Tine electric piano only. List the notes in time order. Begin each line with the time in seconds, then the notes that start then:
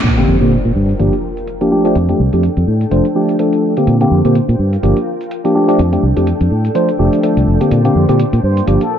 0.17 D3 A#3 C4 G4
0.41 D3 A#3 C4 G4
0.99 F3 A#3 D4 G4
1.61 F3 A#3 D4 G4
1.71 F3 A3 D4 G4
1.84 F3 A3 D4 G4
2.09 F3 A3 D4 G4
2.33 F3 A3 D4 G4
2.91 F3 A3 D4 C5
3.15 F3 A3 D4 G4
3.39 F3 A3 D4 A4
3.77 D3 A#3 C4 G4
4.00 D3 A#3 C4 G4
4.24 D3 A#3 C4 G4
4.83 F3 A#3 D4 G4
5.44 F3 A#3 D4 G4
5.55 F3 A3 D4 G4
5.68 F3 A3 D4 G4
5.92 F3 A3 D4 G4
6.16 F3 A3 D4 G4
6.75 F3 A3 D4 C5
6.99 F3 A3 D4 G4
7.23 F3 A3 D4 A4
7.60 D3 A#3 C4 G4
7.84 D3 A#3 C4 G4
8.08 D3 A#3 C4 G4
8.67 F3 A#3 D4 G4